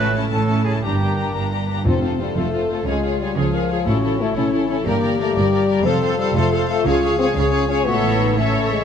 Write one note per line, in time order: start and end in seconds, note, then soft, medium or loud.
0.00 0.26 A1 medium
0.00 0.26 A2 medium
0.00 0.84 A2 soft
0.00 0.64 A3 soft
0.00 0.14 C#4 soft
0.00 0.79 C#4 medium
0.00 0.14 E4 soft
0.00 0.79 A4 medium
0.00 0.13 B4 medium
0.00 0.13 A5 soft
0.14 0.31 C#4 soft
0.14 0.47 E4 soft
0.14 0.31 E4 soft
0.14 0.28 A5 soft
0.29 0.77 A1 soft
0.29 0.77 A2 soft
0.29 0.46 C#4 soft
0.29 0.49 E4 soft
0.29 0.84 A4 soft
0.29 0.64 A4 soft
0.29 0.47 A5 soft
0.48 0.65 C#4 soft
0.48 0.84 E4 soft
0.48 0.65 E4 soft
0.48 0.65 A5 soft
0.64 0.84 A3 soft
0.64 0.83 C#4 soft
0.64 0.83 E4 soft
0.64 0.73 G#4 soft
0.64 0.83 A5 soft
0.82 1.29 G1 soft
0.82 1.87 G2 soft
0.82 1.29 G2 soft
0.82 1.65 D4 soft
0.82 1.00 D4 soft
0.82 1.33 G4 soft
0.82 1.00 G4 soft
0.82 1.65 A#4 soft
0.82 0.99 A#5 soft
1.00 1.66 A#3 soft
1.00 1.18 D4 soft
1.00 1.18 G4 soft
1.00 1.16 A#5 soft
1.17 1.35 D4 soft
1.17 1.50 G4 soft
1.17 1.35 G4 soft
1.17 1.32 A#5 soft
1.34 1.80 G1 soft
1.34 1.80 G2 soft
1.34 1.52 D4 soft
1.34 1.52 G4 soft
1.34 1.87 A#4 soft
1.34 1.51 A#5 soft
1.52 1.67 D4 soft
1.52 1.87 G4 soft
1.52 1.69 G4 soft
1.52 1.67 A#5 soft
1.68 1.87 A#3 soft
1.68 1.85 D4 soft
1.68 1.86 G4 soft
1.68 1.85 A#5 soft
1.85 2.28 F1 medium
1.85 2.88 F2 soft
1.85 2.28 F2 medium
1.85 2.33 F2 medium
1.85 2.18 C4 medium
1.85 2.01 F4 soft
1.85 2.33 F4 soft
1.85 2.03 A4 soft
1.85 2.00 C5 soft
2.01 2.87 C3 soft
2.01 2.18 F4 soft
2.01 2.19 A4 soft
2.01 2.16 C5 soft
2.17 2.37 G3 medium
2.17 2.88 A3 soft
2.17 2.34 F4 soft
2.17 2.36 A4 soft
2.17 2.35 C5 soft
2.35 2.78 F1 medium
2.35 2.78 F2 medium
2.35 2.70 A3 soft
2.35 2.69 C4 soft
2.35 2.51 F4 soft
2.35 2.86 A4 medium
2.35 2.52 C5 soft
2.39 2.53 A4 soft
2.53 2.68 F4 soft
2.53 2.88 A4 soft
2.53 2.69 A4 soft
2.53 2.67 C5 soft
2.68 2.79 A3 medium
2.68 2.88 C4 soft
2.68 2.84 F4 soft
2.68 2.87 A4 soft
2.68 2.85 C5 soft
2.85 3.28 C#2 medium
2.85 3.28 C#3 medium
2.85 3.88 C#3 soft
2.85 3.19 G#3 medium
2.85 3.01 F4 soft
2.85 3.36 F4 medium
2.85 3.03 G#4 soft
2.85 3.02 C#5 soft
3.02 3.88 G#3 soft
3.02 3.19 F4 soft
3.02 3.20 G#4 soft
3.02 3.20 C#5 soft
3.20 3.37 G3 medium
3.20 4.35 C#4 soft
3.20 3.35 F4 soft
3.20 3.35 G#4 soft
3.20 3.37 C#5 soft
3.36 3.79 C#2 medium
3.36 3.78 C#3 medium
3.36 3.86 F3 medium
3.36 3.51 F4 soft
3.36 3.70 F4 soft
3.36 3.53 G#4 soft
3.36 3.55 G#4 medium
3.36 3.52 C#5 soft
3.52 3.67 F4 soft
3.52 3.88 G#4 soft
3.52 3.69 G#4 soft
3.52 3.70 A#4 medium
3.52 3.69 C#5 soft
3.69 3.85 F4 soft
3.69 3.88 F4 soft
3.69 3.86 G#4 soft
3.69 3.84 C#5 soft
3.73 3.79 G#4 medium
3.85 4.28 A1 medium
3.85 4.28 A2 medium
3.85 4.88 A2 soft
3.85 4.20 C#4 medium
3.85 4.02 E4 soft
3.85 4.35 F#4 medium
3.85 4.02 A4 soft
3.85 4.02 C#5 soft
4.03 4.88 E3 soft
4.03 4.18 E4 soft
4.03 4.19 A4 soft
4.03 4.18 C#5 soft
4.19 4.37 A3 medium
4.19 4.88 A3 soft
4.19 4.33 E4 soft
4.19 4.35 A4 soft
4.19 4.33 C#5 soft
4.34 4.78 A1 medium
4.34 4.78 A2 medium
4.34 4.69 C#4 soft
4.34 4.68 C#4 medium
4.34 4.51 E4 soft
4.34 4.86 E4 medium
4.34 4.52 A4 soft
4.34 4.51 C#5 soft
4.52 4.68 E4 soft
4.52 4.87 E4 soft
4.52 4.69 A4 soft
4.52 4.67 C#5 soft
4.68 4.77 C#4 medium
4.68 4.87 C#4 soft
4.68 4.86 E4 soft
4.68 4.86 A4 soft
4.68 4.85 C#5 soft
4.85 5.28 G1 medium
4.85 5.27 G2 medium
4.85 5.87 G2 soft
4.85 5.19 A#3 medium
4.85 5.85 G4 medium
4.85 5.02 G4 medium
4.85 5.02 A#4 soft
4.85 5.00 D5 soft
5.02 5.87 D3 soft
5.02 5.19 G4 soft
5.02 5.19 A#4 soft
5.02 5.18 D5 soft
5.19 5.36 A3 medium
5.19 5.87 A#3 soft
5.19 5.36 G4 soft
5.19 5.36 A#4 soft
5.19 5.34 D5 soft
5.36 5.78 G1 medium
5.36 5.77 G2 medium
5.36 5.86 G3 medium
5.36 5.69 D4 soft
5.36 5.52 G4 soft
5.36 5.53 A#4 soft
5.36 5.52 D5 medium
5.52 5.87 G4 soft
5.52 5.68 G4 soft
5.52 5.68 A#4 soft
5.52 5.68 D5 soft
5.69 5.87 D4 soft
5.69 5.85 G4 soft
5.69 5.85 A#4 soft
5.69 5.85 D5 soft
5.84 6.28 F1 medium
5.84 6.87 F2 medium
5.84 6.27 F2 medium
5.84 6.18 C4 medium
5.84 6.35 A4 medium
5.84 6.03 A4 medium
5.84 6.00 C5 medium
5.84 6.01 F5 medium
6.02 6.87 C3 soft
6.02 6.19 A4 soft
6.02 6.18 C5 soft
6.02 6.19 F5 medium
6.19 6.35 G3 medium
6.19 6.87 C4 soft
6.19 6.36 A4 medium
6.19 6.36 C5 medium
6.19 6.35 F5 soft
6.35 6.77 F1 medium
6.35 6.77 F2 medium
6.35 6.67 A3 medium
6.35 6.84 F4 medium
6.35 6.69 F4 soft
6.35 6.50 A4 medium
6.35 6.53 C5 soft
6.35 6.51 F5 medium
6.52 6.68 A4 soft
6.52 6.88 A4 soft
6.52 6.70 C5 soft
6.52 6.66 F5 soft
6.68 6.85 A3 medium
6.68 7.36 F4 soft
6.68 6.86 A4 soft
6.68 6.84 F5 soft
6.72 6.87 C5 medium
6.85 7.27 C#2 medium
6.85 7.27 C#3 medium
6.85 7.87 C#3 medium
6.85 7.19 F4 medium
6.85 7.85 G#4 medium
6.85 7.02 G#4 medium
6.85 7.03 C#5 medium
6.85 7.02 F5 medium
7.02 7.87 G#3 soft
7.02 7.19 G#4 soft
7.02 7.18 C#5 soft
7.02 7.19 F5 soft
7.19 7.26 C4 medium
7.19 8.19 C#4 soft
7.19 7.36 G#4 medium
7.19 7.36 C#5 soft
7.19 7.33 F5 medium
7.34 7.78 C#2 medium
7.34 7.78 C#3 medium
7.34 7.67 C#4 medium
7.34 7.68 F4 soft
7.34 7.51 C#5 medium
7.34 7.50 F5 medium
7.39 7.52 G#4 medium
7.51 7.88 G#4 soft
7.51 7.69 G#4 soft
7.51 7.69 C#5 soft
7.51 7.68 F5 medium
7.68 7.85 C#4 medium
7.68 7.87 F4 soft
7.68 7.87 G#4 soft
7.68 7.85 C#5 medium
7.68 7.86 F5 soft
7.84 8.84 A1 medium
7.84 8.84 A2 medium
7.84 8.36 B3 medium
7.84 7.95 F#4 medium
7.84 8.34 C#5 medium
7.84 8.33 E5 medium
7.89 8.35 A4 medium
8.02 8.84 E3 soft
8.02 8.22 E4 medium
8.20 8.84 C#4 soft
8.20 8.42 D#4 medium
8.37 8.71 A3 medium
8.37 8.72 C#4 medium
8.37 8.69 E4 soft
8.37 8.84 A4 medium
8.37 8.84 C#5 medium
8.37 8.62 E5 medium
8.54 8.84 A4 soft
8.63 8.84 E5 soft
8.71 8.84 G#3 medium
8.71 8.84 E4 soft